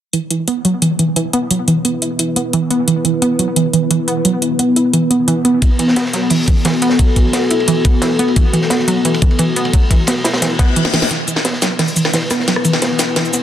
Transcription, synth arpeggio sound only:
0.13 E3
0.31 E3
0.48 B3
0.65 F#3
0.82 E3
0.99 E3
1.16 E3
1.33 B3
1.51 F#3
1.68 E3
1.85 B3
2.02 E4
2.19 E3
2.36 B3
2.54 E3
2.71 B3
2.88 E3
3.05 E3
3.22 B3
3.39 F#3
3.56 E3
3.73 E3
3.91 E3
4.08 B3
4.25 F#3
4.42 E3
4.59 B3
4.76 E4
4.93 E3
5.11 B3
5.28 E3
5.45 B3
5.62 E3
5.79 E3
5.96 B3
6.13 F#3
6.31 E3
6.48 E3
6.65 E3
6.82 B3
6.99 F#3
7.16 E3
7.34 B3
7.51 E4
7.68 E3
7.85 B3
8.02 E3
8.19 B3
8.36 E3
8.53 E3
8.71 B3
8.88 F#3
9.05 E3
9.22 E3
9.39 E3
9.56 B3
9.74 F#3
9.91 E3
10.08 B3
10.25 E4
10.42 E3
10.59 B3
10.76 E3
10.93 E3
11.11 E3
11.28 E3
11.45 B3
11.62 F#3
11.79 E3
11.96 E3
12.13 E3
12.31 B3
12.48 F#3
12.65 E3
12.82 B3
12.99 E4
13.16 E3
13.33 B3

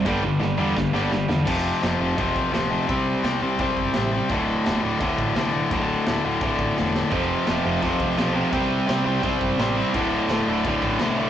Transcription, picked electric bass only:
0.06 G1
0.24 G1
0.41 G1
0.58 E2
0.77 G1
0.94 G1
1.11 G1
1.29 E2
1.47 F1
1.82 F1
2.00 F1
2.18 F1
2.36 C2
2.53 D1
2.89 C2
3.24 C2
3.42 C2
3.59 C2
3.77 G1
3.97 A1
4.30 D1
4.67 D1
4.84 D1
5.01 D1
5.18 A1
5.36 C2
5.71 D1
6.07 D1
6.25 D1
6.42 D1
6.59 A1
6.78 E1
7.12 F1
7.48 F1
7.65 F1
7.83 F1
8.00 C2
8.18 B1
8.52 C2
8.89 C2
9.06 C2
9.24 C2
9.41 G1
9.58 A1
9.94 D1
10.28 D1
10.47 D1
10.65 D1
10.83 A1
11.00 C2

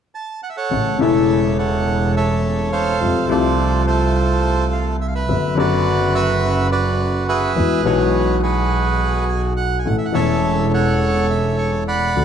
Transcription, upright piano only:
0.71 A1 A2 C#3 E3 A3 E4
0.98 E1 E2 C#3 E3 A3 E4
3.01 F2 C3 F3 A3 F4
3.27 C2 C3 F3 A3 F4
5.29 F#2 D3 F#3 B3 F#4
5.55 F#2 D3 F#3 B3
5.59 F#4
7.56 E2 E3 G#3 B3 F#4
7.83 B1 B2 E3 G#3 B3
7.87 F#4
9.85 A1 A2 E3 A3 C#4 A4
10.12 E1 E2 E3 A3 C#4 A4
12.16 D2 D3 F#3 A3 D4 A4

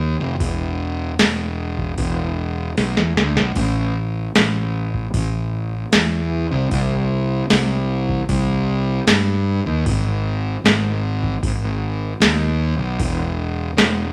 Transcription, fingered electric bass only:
Already playing: D#2
0.20 F1
0.40 E1
1.20 E1
1.98 E1
2.78 B1
2.97 E2
3.17 D2
3.36 B1
3.56 A1
4.36 A1
5.14 A1
5.92 E2
6.52 C2
6.71 C2
7.50 C2
8.29 C2
9.07 G2
9.66 D#2
9.86 G#1
10.64 G#1
11.43 G#1
12.20 D#2
12.78 B1
12.99 E1
13.77 E1

